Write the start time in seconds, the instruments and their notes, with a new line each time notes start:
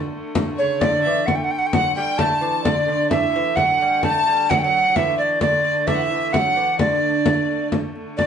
Already playing: hurdy-gurdy D3 A3
0.35 frame drum
0.56 lute C#3, fiddle C#5, recorder C#5
0.79 lute D3, fiddle D5, recorder D5, frame drum
1.02 lute E3, fiddle E5
1.26 recorder F#5, frame drum
1.35 recorder G5
1.44 recorder F#5
1.51 recorder G5
1.59 recorder F#5
1.66 recorder G5
1.73 lute F#3, recorder F#5, fiddle F#5, frame drum
1.95 lute G3, recorder G5, fiddle G5
2.18 lute A3, recorder A5, fiddle A5, frame drum
2.41 lute E3
2.64 hurdy-gurdy D3 A3, lute D3, recorder D5, fiddle D5, frame drum
2.88 lute D3, fiddle D5
3.10 lute E3, fiddle E5, recorder E5, frame drum
3.36 lute E3
3.55 lute F#3, fiddle F#5, recorder F#5, frame drum
3.81 lute G3
4.03 lute A3, fiddle A5, recorder A5, frame drum
4.27 lute G3
4.48 lute F#3, fiddle F#5, recorder F#5, frame drum
4.59 recorder G5
4.63 lute F#3, recorder F#5, fiddle F#5
4.90 lute F#3
4.96 lute E3, recorder E5, fiddle E5, frame drum
5.18 fiddle D5, recorder D5
5.40 lute D3, fiddle D5, recorder D5, frame drum
5.63 fiddle D5
5.87 lute E3, recorder E5, fiddle E5, frame drum
5.94 fiddle F#5
6.02 fiddle E5
6.10 lute E3
6.32 lute F#3, fiddle F#5, recorder F#5, frame drum
6.56 lute E3
6.79 lute D3, fiddle D5, recorder D5, frame drum
7.26 frame drum
7.72 frame drum
7.96 frame drum
8.17 hurdy-gurdy D3 A3, recorder D5, fiddle D5, frame drum